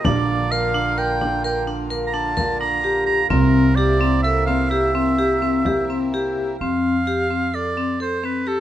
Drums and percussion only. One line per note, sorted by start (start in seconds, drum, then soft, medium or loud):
0.05 frame drum medium
0.52 frame drum soft
0.75 frame drum soft
0.98 frame drum soft
1.21 frame drum soft
1.91 frame drum soft
2.37 frame drum soft
3.08 frame drum soft
3.30 frame drum medium
3.77 frame drum soft
4.47 frame drum soft
4.70 frame drum soft
5.41 frame drum soft
5.65 frame drum soft
6.37 frame drum soft